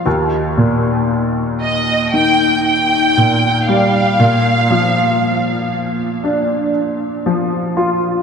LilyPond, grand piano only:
\new Staff \with { instrumentName = "Grand piano" } { \clef bass \time 4/4 \key ees \major \tempo 4 = 59 ees,8 bes,4. ees4 bes,8 g8 | bes,8 f4. d'4 f8 f'8 | }